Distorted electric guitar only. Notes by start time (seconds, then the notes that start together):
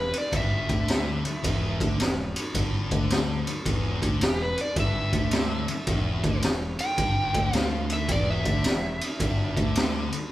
0.32 G2
0.69 D3
1.24 muted distorted electric guitar stroke
1.43 E2
1.80 D3
1.99 E2
2.54 G2
2.91 D3
3.47 muted distorted electric guitar stroke
3.66 E2
4.02 D3
4.22 E2
4.77 G2
5.13 D3
5.69 muted distorted electric guitar stroke
5.88 E2
6.24 D3
6.43 E2
6.98 G2
7.35 D3
7.53 D3
8.09 E2
8.45 D3
8.65 E2
9.20 G2
9.57 D3
10.12 muted distorted electric guitar stroke